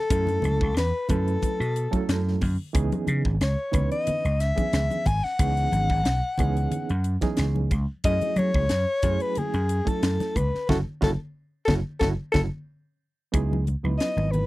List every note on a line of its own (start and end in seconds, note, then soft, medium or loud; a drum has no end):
0.00 0.74 A4 loud
0.10 0.36 F#2 loud
0.10 0.70 F#3 medium
0.10 0.71 A3 medium
0.10 0.70 C#4 medium
0.10 0.71 E4 medium
0.10 0.71 A4 medium
0.10 kick loud
0.10 closed hi-hat medium
0.27 closed hi-hat soft
0.27 high conga medium
0.42 0.58 C#2 medium
0.42 closed hi-hat medium
0.42 high conga medium
0.42 low conga medium
0.61 0.73 C#2 medium
0.61 kick medium
0.77 0.91 E2 medium
0.77 1.08 B4 medium
0.77 snare loud
0.77 closed hi-hat medium
1.08 1.36 F#2 medium
1.08 1.60 F#3 medium
1.08 1.59 A3 medium
1.08 1.60 C#4 medium
1.08 1.60 E4 medium
1.08 2.38 A4 medium
1.08 1.60 B4 medium
1.08 kick medium
1.08 closed hi-hat medium
1.08 low conga medium
1.28 closed hi-hat soft
1.42 kick medium
1.42 closed hi-hat medium
1.42 high conga medium
1.60 1.86 B2 medium
1.60 closed hi-hat soft
1.76 closed hi-hat medium
1.91 2.41 F#3 medium
1.91 2.41 A3 medium
1.91 2.41 C#4 medium
1.91 2.41 E4 medium
1.91 2.41 A4 medium
1.91 kick medium
1.91 closed hi-hat soft
1.91 high conga medium
2.09 2.35 F#2 medium
2.09 snare loud
2.09 closed hi-hat medium
2.28 snare soft
2.41 2.56 F#2 medium
2.41 kick medium
2.41 open hi-hat medium
2.41 low conga medium
2.73 2.89 C#2 loud
2.73 3.34 E3 medium
2.73 3.34 B3 medium
2.73 3.35 C#4 medium
2.73 3.34 D#4 medium
2.73 3.35 G#4 medium
2.73 kick loud
2.73 closed hi-hat medium
2.92 closed hi-hat soft
2.92 high conga medium
3.07 3.22 C#3 medium
3.07 closed hi-hat medium
3.07 high conga medium
3.25 3.38 G#1 medium
3.25 kick medium
3.41 3.55 C#2 medium
3.41 3.89 C#5 medium
3.41 snare loud
3.41 closed hi-hat medium
3.72 3.88 C#2 medium
3.72 4.24 E3 medium
3.72 4.23 B3 medium
3.72 4.24 C#4 medium
3.72 4.24 D#4 medium
3.72 4.24 B4 medium
3.72 kick medium
3.72 closed hi-hat medium
3.72 low conga medium
3.92 4.42 D#5 medium
3.92 closed hi-hat soft
4.07 muted slap bass stroke soft
4.07 closed hi-hat medium
4.07 low conga medium
4.25 4.51 C#2 medium
4.25 closed hi-hat soft
4.40 5.08 E5 medium
4.40 snare soft
4.40 closed hi-hat medium
4.55 5.06 D#3 medium
4.55 5.05 E3 medium
4.55 5.06 B3 medium
4.55 5.06 C#4 medium
4.55 5.06 G#4 medium
4.55 kick medium
4.55 closed hi-hat soft
4.55 high conga medium
4.73 4.87 C#2 medium
4.73 snare loud
4.73 closed hi-hat medium
4.90 closed hi-hat soft
4.90 high conga medium
5.06 5.20 G#1 medium
5.06 5.25 G#5 loud
5.06 kick medium
5.06 closed hi-hat medium
5.06 low conga medium
5.24 7.22 F#5 loud
5.24 muted slap bass stroke soft
5.24 snare soft
5.39 5.65 C#2 medium
5.39 5.99 E3 medium
5.39 5.99 B3 medium
5.39 5.99 C#4 medium
5.39 5.99 D#4 medium
5.39 5.99 G#4 medium
5.39 kick loud
5.39 closed hi-hat medium
5.57 closed hi-hat soft
5.72 5.86 G#1 medium
5.72 closed hi-hat medium
5.72 high conga medium
5.90 6.02 G#1 medium
5.90 kick medium
6.05 6.20 B1 medium
6.05 snare loud
6.05 closed hi-hat medium
6.38 6.65 C#2 medium
6.38 6.89 E3 medium
6.38 6.90 B3 medium
6.38 6.89 C#4 medium
6.38 6.90 D#4 medium
6.38 6.90 G#4 medium
6.38 kick medium
6.38 closed hi-hat medium
6.38 low conga medium
6.57 closed hi-hat soft
6.71 closed hi-hat medium
6.71 low conga medium
6.89 7.16 F#2 medium
6.89 closed hi-hat soft
7.04 closed hi-hat medium
7.21 7.70 E3 medium
7.21 7.71 B3 medium
7.21 7.71 C#4 medium
7.21 7.71 D#4 medium
7.21 7.71 G#4 medium
7.21 kick medium
7.21 snare soft
7.21 closed hi-hat soft
7.21 high conga medium
7.37 7.64 C#2 medium
7.37 snare medium
7.37 closed hi-hat medium
7.56 high conga soft
7.71 7.85 C#2 medium
7.71 kick medium
7.71 closed hi-hat soft
7.71 low conga medium
8.04 8.18 F#2 loud
8.04 8.64 F#3 medium
8.04 8.64 A3 medium
8.04 8.64 C#4 medium
8.04 8.64 E4 medium
8.04 8.64 G#4 medium
8.04 8.40 D#5 loud
8.04 kick loud
8.04 closed hi-hat medium
8.21 closed hi-hat soft
8.21 high conga medium
8.36 8.50 F#3 loud
8.36 9.23 C#5 loud
8.36 closed hi-hat medium
8.36 high conga medium
8.54 8.67 C#2 medium
8.54 kick medium
8.69 8.84 F#2 loud
8.69 snare loud
8.69 closed hi-hat medium
9.02 9.17 F#2 loud
9.02 9.54 F#3 medium
9.02 9.54 A3 medium
9.02 9.54 C#4 medium
9.02 9.54 E4 medium
9.02 9.54 G#4 medium
9.02 kick medium
9.02 closed hi-hat medium
9.02 low conga medium
9.20 9.40 B4 medium
9.20 closed hi-hat soft
9.35 9.90 G#4 medium
9.35 muted slap bass stroke soft
9.35 closed hi-hat medium
9.35 low conga medium
9.54 9.80 F#2 medium
9.54 closed hi-hat soft
9.69 closed hi-hat medium
9.85 10.35 F#3 medium
9.85 10.35 A3 medium
9.85 10.35 C#4 medium
9.85 10.35 E4 medium
9.85 10.35 A4 medium
9.85 10.38 A4 medium
9.85 kick medium
9.85 closed hi-hat soft
9.85 high conga medium
10.03 10.16 F#2 medium
10.03 snare loud
10.03 closed hi-hat medium
10.20 snare soft
10.20 closed hi-hat soft
10.20 high conga medium
10.36 10.49 C#2 medium
10.36 10.69 B4 medium
10.36 kick medium
10.36 closed hi-hat medium
10.36 low conga medium
10.54 muted slap bass stroke soft
10.54 snare soft
10.69 10.82 F#1 medium
10.69 10.80 C#4 medium
10.69 10.80 E4 medium
10.69 10.80 F#4 loud
10.69 10.78 A4 medium
10.69 kick medium
10.69 snare medium
10.69 low conga loud
11.01 11.15 F#1 medium
11.01 11.12 C#4 medium
11.01 11.13 E4 loud
11.01 11.12 F#4 medium
11.01 11.11 A4 medium
11.01 kick medium
11.01 snare medium
11.01 low conga medium
11.65 11.81 F#1 medium
11.65 11.79 C#4 medium
11.65 11.79 E4 medium
11.65 11.79 F#4 medium
11.65 11.74 A4 medium
11.65 kick medium
11.65 snare medium
11.65 low conga medium
12.00 12.14 F#1 medium
12.00 12.12 C#4 medium
12.00 12.13 E4 medium
12.00 12.12 F#4 medium
12.00 12.08 A4 medium
12.00 kick medium
12.00 snare medium
12.00 low conga medium
12.32 12.47 F#1 medium
12.32 12.45 C#4 medium
12.32 12.45 E4 medium
12.32 12.45 F#4 medium
12.32 12.41 A4 medium
12.32 kick medium
12.32 snare medium
12.32 low conga loud
13.32 13.74 C#2 medium
13.32 13.63 F#3 medium
13.32 13.63 B3 medium
13.32 13.63 D#4 medium
13.32 13.63 E4 medium
13.32 13.64 G#4 medium
13.32 kick loud
13.32 closed hi-hat medium
13.53 high conga medium
13.67 closed hi-hat soft
13.67 high conga medium
13.83 13.97 C#2 medium
13.83 14.46 F#3 medium
13.83 14.46 B3 medium
13.83 14.46 D#4 medium
13.83 14.46 E4 medium
13.83 14.46 B4 medium
13.83 high conga medium
13.98 14.33 D#5 medium
13.98 snare loud
13.98 closed hi-hat medium
14.16 14.43 G#1 medium
14.16 high conga medium
14.31 14.46 B4 medium
14.31 closed hi-hat medium
14.31 low conga medium